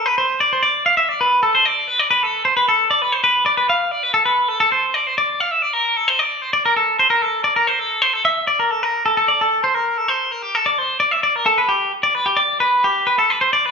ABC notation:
X:1
M:5/4
L:1/16
Q:1/4=131
K:Dm
V:1 name="Clean electric guitar"
=B c2 d c d2 f e d B2 A c d2 B d B A- | A c =B A2 d B c B2 d B f2 d B A B2 A | A c2 d c d2 f e d B2 A c d2 c d B A- | A c B A2 d B c A2 c A e2 d B A B2 A |
A d A2 c B2 A c2 B G A d c2 d e d B | A =B G2 z d B G d2 B2 G2 B A B c d B |]